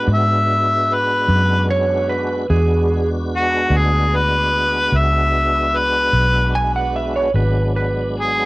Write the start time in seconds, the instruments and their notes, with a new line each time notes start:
Already playing: tonewheel organ G#3 B3 D4 F#4
0.08 fingered electric bass G#2
0.14 harmonica E5
0.94 harmonica B4
1.28 fingered electric bass F#2
1.70 electric slide guitar C#5
2.09 electric slide guitar B4
2.49 fingered electric bass E2, tonewheel organ G#3 B3 D4 F#4, electric slide guitar G#4
3.36 harmonica F#4
3.70 fingered electric bass D2
3.77 harmonica G#4
4.16 harmonica B4
4.92 fingered electric bass C#2
4.97 harmonica E5
5.77 harmonica B4
6.13 fingered electric bass B1
6.55 electric slide guitar G#5
6.76 electric slide guitar F#5
6.96 electric slide guitar E5
7.16 electric slide guitar C#5
7.34 fingered electric bass G#1, tonewheel organ F#3 G#3 B3 D4, electric slide guitar B4
7.76 electric slide guitar B4
8.20 harmonica G#4